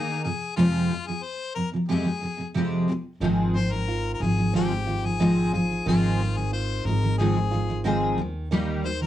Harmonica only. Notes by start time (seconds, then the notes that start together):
Already playing: G#4
0.24 G#4
0.57 F4
1.07 G#4
1.23 C5
1.55 A#4
1.89 G#4
3.56 C5
3.73 A#4
4.14 A#4
4.22 G#4
4.55 G4
5.06 G#4
5.54 G#4
5.88 F4
6.37 G#4
6.53 C5
6.86 A#4
7.18 G#4
8.86 C5
9.03 A#4